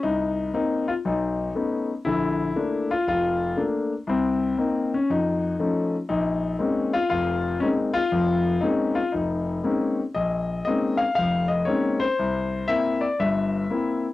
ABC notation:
X:1
M:4/4
L:1/8
Q:"Swing" 1/4=119
K:Bbm
V:1 name="Grand piano"
E2 E F ^D3 z | =E3 F F2 z2 | C2 z D E3 z | E3 F F2 D F- |
F2 E F E3 z | e2 e f f e d c- | c2 =e =d e3 z |]
V:2 name="Grand piano"
C,,2 [B,C] z =B,,,2 [=A,=B,^C^D] z | [B,,,=D,]2 [=A,B,=D] z F,,,2 [A,B,D] z | C,,2 [B,CE] z F,,2 [F,=A,DE] z | B,,,2 [A,B,CDE] z [F,,,F,,]2 [A,B,CE] z |
[F,,,F,,]2 [A,B,CD] z F,,,2 [A,B,CDE] z | B,,,2 [A,B,CDE] z [F,,,F,,]2 [A,B,CDE] z | C,,2 [B,C=E] z [=G,,,=G,,]2 [B,CE] z |]